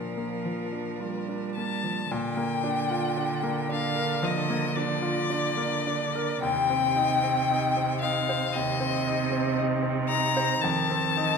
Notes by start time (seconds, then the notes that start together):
Already playing: A#2 F3 A#3 D4 F4 A#4
0.18 A#3
0.45 F3
0.72 D4
1.00 G3 F4
1.29 D4
1.55 A#3 A5
1.84 F3
2.11 A#2 D3 G5
2.37 A#3
2.64 D4
2.91 F4
3.17 D4
3.43 A#3
3.69 D4 F5
3.96 A#4
4.23 F3 D#5
4.50 A#3
4.76 D4 D5
5.02 F4
5.30 D4
5.57 A#3
5.87 D4
6.15 A#4
6.41 D#2 C3 G5
6.70 C4
6.96 D#4
7.23 C4
7.50 D#4
7.77 C4
8.01 D#4 F5
8.29 C5
8.53 D#2 C3 D#5
8.80 C4
9.07 D#4
9.32 C4
9.57 D#4
9.83 C4
10.09 D#4 A#5
10.37 C5
10.61 F2 D#3 A5
10.90 C4
11.17 D#4